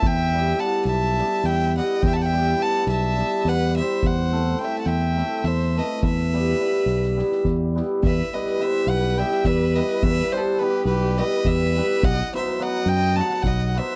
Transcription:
<<
  \new Staff \with { instrumentName = "Violin" } { \time 7/8 \key e \minor \tempo 4 = 105 g''4 a''8 a''4 g''8 fis''8 | g''32 a''32 g''8. a''8 a''4 fis''8 e''8 | fis''4 g''16. a''32 g''4 e''8 dis''8 | e''2~ e''8 r4 |
e''8 dis''8 e''8 fis''8 g''8 e''8 dis''8 | e''8 c''8 b'8 b'8 dis''8 e''4 | fis''8 e''8 fis''8 g''8 a''8 fis''16. fis''32 e''8 | }
  \new Staff \with { instrumentName = "Violin" } { \time 7/8 \key e \minor e''4 fis''8 e''4 e''8 dis''8 | e''32 fis''32 e''8. fis''8 e''4 b'8 c''8 | c''4 e''16. fis''32 e''4 c''8 b'8 | b'2~ b'8 r4 |
b'8 b'8 c''8 b'8 e''8 b'8 b'8 | b'8 a'8 g'8 g'8 b'8 b'4 | dis''8 c''8 dis''8 dis''8 fis''8 dis''16. dis''32 c''8 | }
  \new Staff \with { instrumentName = "Hammered dulcimer" } { \time 7/8 \key e \minor r8 <g b e' g'>8 <g b e' g'>8 r8 <g b e' g'>8 r8 <g b e' g'>8 | r8 <g b e' g'>8 <g b e' g'>8 r8 <g b e' g'>8 r8 <g b e' g'>8 | r8 <a c' e' a'>8 <a c' e' a'>8 r8 <a c' e' a'>8 r8 <a c' e' a'>8 | r8 <g b e' g'>8 <g b e' g'>8 r8 <g b e' g'>8 r8 <g b e' g'>8 |
r8 <g b e' g' b'>8 <g b e' g' b'>8 r8 <g b e' g' b'>8 r8 <g b e' g' b'>8 | r8 <g b e' g' b'>8 <g b e' g' b'>8 r8 <g b e' g' b'>8 r8 <g b e' g' b'>8 | r8 <fis b dis' fis' b'>8 <fis b dis' fis' b'>8 r8 <fis b dis' fis' b'>8 r8 <fis b dis' fis' b'>8 | }
  \new Staff \with { instrumentName = "Fingered electric bass" } { \clef bass \time 7/8 \key e \minor e,4. b,,4 e,4 | e,4. b,,4 e,4 | e,4. e,4 e,4 | e,4. b,,4 e,4 |
e,8 r4 b,,4 e,4 | e,8 r4 b,,4 e,4 | b,,8 r4 fis,4 b,,4 | }
  \new DrumStaff \with { instrumentName = "Drums" } \drummode { \time 7/8 bd4 sn8 sn8 sn8 sn8 sn8 | bd8 sn8 sn8 sn8 sn8 sn8 sn8 | bd8 sn8 sn8 sn8 sn8 sn8 sn8 | bd16 sn16 sn8 sn16 sn16 sn16 sn16 sn16 sn16 <bd sn>8 sn8 |
bd8. sn16 sn8 sn8 sn16 sn16 <bd sn>16 sn8 sn16 | bd8 sn16 sn16 sn8 sn8 sn16 sn16 <bd sn>16 sn16 sn16 sn16 | bd8 sn16 sn16 sn8 sn8 sn16 sn16 <bd sn>16 sn16 sn8 | }
>>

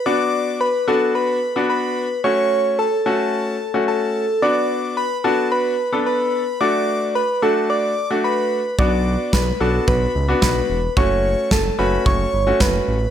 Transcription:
<<
  \new Staff \with { instrumentName = "Soft synth lead" } { \time 4/4 \key b \minor \tempo 4 = 110 d''4 b'8 a'8 b'4 b'4 | cis''4 a'8 a'4. a'4 | d''4 b'8 a'8 b'4 b'4 | d''4 b'8 a'8 d''4 b'4 |
d''4 b'8 a'8 b'4 b'4 | cis''4 a'8 b'8 cis''4 b'4 | }
  \new Staff \with { instrumentName = "Grand piano" } { \time 4/4 \key b \minor <b d' fis'>4 r8 <b d' fis'>4 r16 <b d' fis'>4 r16 | <a cis' fis'>4 r8 <a cis' fis'>4 r16 <a cis' fis'>4 r16 | <b d' fis'>4 r8 <b d' fis'>4 r16 <b d' a'>4 r16 | <a d' fis'>4 r8 <a d' fis'>4 r16 <a d' fis'>4 r16 |
<b d' fis'>4 r8 <b d' fis'>4 r16 <b d' fis'>4 r16 | <a cis' fis'>4 r8 <a cis' fis'>4 r16 <a cis' fis'>4 r16 | }
  \new Staff \with { instrumentName = "Analog synth bass" } { \clef bass \time 4/4 \key b \minor r1 | r1 | r1 | r1 |
b,,4 b,,8 b,,8 b,,8 cis,8 b,,8 e,,8 | fis,,4 fis,,8 fis,,8 fis,,8 g,,8 fis,,8 a,,8 | }
  \new DrumStaff \with { instrumentName = "Drums" } \drummode { \time 4/4 r4 r4 r4 r4 | r4 r4 r4 r4 | r4 r4 r4 r4 | r4 r4 r4 r4 |
bd4 <bd sn>4 bd4 <bd sn>4 | bd4 <bd sn>4 bd4 <bd sn>4 | }
>>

